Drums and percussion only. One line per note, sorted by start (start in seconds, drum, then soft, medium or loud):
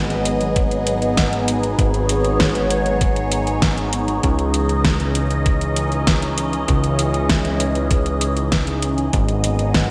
0.10 closed hi-hat soft
0.25 closed hi-hat medium
0.41 closed hi-hat soft
0.56 kick loud
0.56 closed hi-hat medium
0.71 closed hi-hat soft
0.87 closed hi-hat medium
1.02 closed hi-hat soft
1.17 kick loud
1.17 snare loud
1.17 closed hi-hat medium
1.33 closed hi-hat soft
1.48 closed hi-hat medium
1.63 closed hi-hat soft
1.79 kick loud
1.79 closed hi-hat medium
1.94 closed hi-hat soft
2.09 closed hi-hat medium
2.25 closed hi-hat soft
2.40 kick loud
2.40 snare loud
2.40 closed hi-hat medium
2.55 closed hi-hat soft
2.70 closed hi-hat medium
2.86 closed hi-hat soft
3.01 kick loud
3.01 closed hi-hat medium
3.16 closed hi-hat soft
3.32 closed hi-hat medium
3.47 closed hi-hat soft
3.62 kick loud
3.62 snare loud
3.62 closed hi-hat medium
3.78 closed hi-hat soft
3.93 closed hi-hat medium
4.08 closed hi-hat soft
4.23 kick loud
4.23 closed hi-hat medium
4.39 closed hi-hat soft
4.54 closed hi-hat medium
4.69 closed hi-hat soft
4.85 kick loud
4.85 snare loud
4.85 closed hi-hat medium
5.00 closed hi-hat soft
5.15 closed hi-hat medium
5.31 closed hi-hat soft
5.46 kick loud
5.46 closed hi-hat medium
5.61 closed hi-hat soft
5.76 closed hi-hat medium
5.92 closed hi-hat soft
6.07 kick loud
6.07 snare loud
6.07 closed hi-hat medium
6.22 closed hi-hat soft
6.38 closed hi-hat medium
6.53 closed hi-hat soft
6.68 kick loud
6.68 closed hi-hat medium
6.84 closed hi-hat soft
6.99 closed hi-hat medium
7.14 closed hi-hat soft
7.29 kick loud
7.29 snare loud
7.29 closed hi-hat medium
7.45 closed hi-hat soft
7.60 closed hi-hat medium
7.75 closed hi-hat soft
7.91 kick loud
7.91 closed hi-hat medium
8.06 closed hi-hat soft
8.21 closed hi-hat medium
8.37 closed hi-hat soft
8.52 kick loud
8.52 snare loud
8.52 closed hi-hat medium
8.67 closed hi-hat soft
8.82 closed hi-hat medium
8.98 closed hi-hat soft
9.13 kick loud
9.13 closed hi-hat medium
9.29 closed hi-hat soft
9.44 closed hi-hat medium
9.59 closed hi-hat soft
9.74 kick loud
9.74 snare loud
9.74 closed hi-hat medium